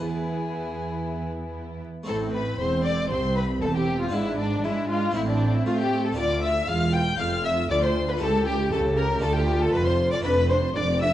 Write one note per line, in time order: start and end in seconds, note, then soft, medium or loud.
0.00 1.84 E2 soft
0.00 1.85 E2 medium
0.00 1.84 B3 medium
0.00 2.02 B3 soft
0.00 2.03 E4 soft
0.00 1.84 E4 medium
0.00 1.53 G#4 medium
0.00 1.54 G#4 medium
2.04 4.07 A3 soft
2.04 4.08 C4 soft
2.04 4.08 E4 medium
2.04 2.32 A4 medium
2.08 2.56 A1 medium
2.08 2.56 A2 medium
2.08 2.56 C4 medium
2.08 2.16 A4 medium
2.08 2.17 A5 medium
2.33 2.59 B4 medium
2.33 2.59 B5 medium
2.59 3.10 E1 medium
2.59 3.10 E2 medium
2.59 3.07 E2 soft
2.59 3.10 C4 medium
2.59 2.84 C5 medium
2.59 2.85 C5 medium
2.59 2.86 C6 medium
2.85 3.10 D5 medium
2.85 3.11 D6 medium
3.11 3.58 C2 soft
3.11 3.62 C2 medium
3.11 3.61 C4 medium
3.11 3.36 C5 medium
3.11 3.36 C6 loud
3.37 3.45 B4 medium
3.37 3.62 B5 medium
3.62 4.13 E1 medium
3.62 4.09 E2 medium
3.62 4.13 E2 medium
3.62 4.12 C4 medium
3.62 3.67 A4 medium
3.62 3.75 A5 medium
3.75 4.00 G4 medium
3.75 4.01 G5 medium
4.00 4.13 F4 medium
4.00 4.15 F4 medium
4.00 4.14 F5 medium
4.09 5.10 B3 medium
4.09 5.11 D4 medium
4.09 5.11 E4 soft
4.13 4.63 G#1 medium
4.13 4.60 G#2 medium
4.13 4.63 G#2 medium
4.13 4.63 D4 medium
4.13 4.38 E4 medium
4.13 4.39 E5 medium
4.38 4.64 D4 medium
4.38 4.66 D4 medium
4.38 4.64 D5 medium
4.64 5.15 G#2 medium
4.64 5.11 G#3 medium
4.64 5.15 G#3 medium
4.64 5.14 D4 medium
4.64 4.89 E4 medium
4.64 4.89 E5 medium
4.90 5.15 F4 medium
4.90 5.15 F5 medium
5.11 5.65 A3 soft
5.11 6.13 C4 soft
5.11 6.14 E4 medium
5.15 5.65 A1 medium
5.15 5.65 A2 medium
5.15 5.62 A2 medium
5.15 6.17 C4 medium
5.15 5.28 E4 medium
5.15 5.21 E4 medium
5.15 5.21 E5 medium
5.28 5.53 D4 medium
5.28 5.56 D4 medium
5.28 5.53 D5 medium
5.54 5.66 E4 medium
5.54 5.67 E5 medium
5.66 6.16 A2 medium
5.66 6.16 A3 medium
5.66 6.11 A3 medium
5.66 5.79 F4 medium
5.66 5.72 F4 medium
5.66 5.79 F5 loud
5.79 6.05 G4 medium
5.79 6.04 G4 medium
5.79 6.05 G5 medium
6.05 6.17 A4 medium
6.05 6.10 A4 medium
6.05 6.18 A5 medium
6.12 6.64 A3 medium
6.12 8.16 D4 medium
6.12 8.16 F4 medium
6.17 6.64 D2 medium
6.17 6.67 D2 medium
6.17 6.67 F4 medium
6.17 6.25 D5 medium
6.17 6.42 D5 medium
6.17 6.43 D6 loud
6.43 6.70 E5 medium
6.43 6.68 E5 medium
6.43 6.69 E6 medium
6.68 7.18 E1 medium
6.68 7.15 E2 medium
6.68 7.18 E2 medium
6.68 7.18 F4 medium
6.68 6.94 F5 medium
6.68 6.95 F5 medium
6.68 6.94 F6 loud
6.93 7.01 G5 medium
6.93 7.19 G5 medium
6.93 7.20 G6 loud
7.19 7.69 F1 medium
7.19 7.66 F2 medium
7.19 7.69 F2 medium
7.19 7.69 F4 medium
7.19 7.27 F5 medium
7.19 7.44 F5 medium
7.19 7.45 F6 loud
7.45 7.53 E5 medium
7.45 7.70 E5 medium
7.45 7.71 E6 medium
7.70 8.17 D2 medium
7.70 8.20 D2 medium
7.70 8.20 F4 medium
7.70 7.83 D5 medium
7.70 7.76 D5 medium
7.70 7.83 D6 loud
7.83 8.09 C5 medium
7.83 7.92 C5 medium
7.83 8.08 C6 loud
8.08 8.14 B4 medium
8.08 8.21 B4 medium
8.08 8.22 B5 medium
8.17 9.17 A3 medium
8.17 9.18 E4 medium
8.17 9.19 G4 medium
8.21 8.71 C#2 medium
8.21 8.68 C#2 medium
8.21 8.71 G4 medium
8.21 8.49 A4 medium
8.21 8.47 A4 medium
8.21 8.46 A5 loud
8.47 8.71 G4 medium
8.47 8.72 G5 loud
8.72 9.23 C#2 medium
8.72 9.23 C#3 medium
8.72 9.19 C#3 medium
8.72 9.22 G4 medium
8.72 8.99 A4 medium
8.72 8.80 A4 medium
8.72 8.80 A5 medium
8.97 9.22 A#4 medium
8.97 9.25 A#4 medium
8.97 9.05 A#5 loud
9.19 10.19 A3 medium
9.19 10.20 D4 medium
9.19 10.21 F4 medium
9.19 9.35 A5 loud
9.23 9.73 D2 medium
9.23 9.70 D2 medium
9.23 9.73 D2 medium
9.23 10.25 F4 medium
9.23 9.36 A4 medium
9.35 9.61 G4 medium
9.35 9.63 G4 medium
9.35 9.61 G5 loud
9.60 9.74 A4 medium
9.60 9.74 A5 loud
9.74 10.23 F1 medium
9.74 10.21 F2 medium
9.74 10.24 F2 medium
9.74 9.87 B4 medium
9.74 9.87 B5 loud
9.86 9.95 C5 medium
9.86 10.12 C5 medium
9.86 10.12 C6 loud
10.12 10.17 D5 medium
10.12 10.25 D5 medium
10.12 10.17 D6 loud
10.20 11.13 A3 medium
10.20 11.13 D4 medium
10.20 11.13 A4 medium
10.25 10.70 F1 medium
10.25 10.70 F2 medium
10.25 10.67 F2 medium
10.25 10.33 D4 medium
10.25 10.50 B4 loud
10.25 10.33 B5 loud
10.50 10.58 D4 medium
10.50 10.58 C5 medium
10.50 10.76 C5 medium
10.50 10.75 C6 medium
10.75 11.13 F1 medium
10.75 11.13 F2 medium
10.75 10.84 D4 medium
10.75 10.84 D5 loud
10.75 11.01 D5 medium
10.75 11.01 D6 loud
11.01 11.09 D4 medium
11.01 11.13 E5 medium
11.01 11.10 E5 loud
11.01 11.13 E6 loud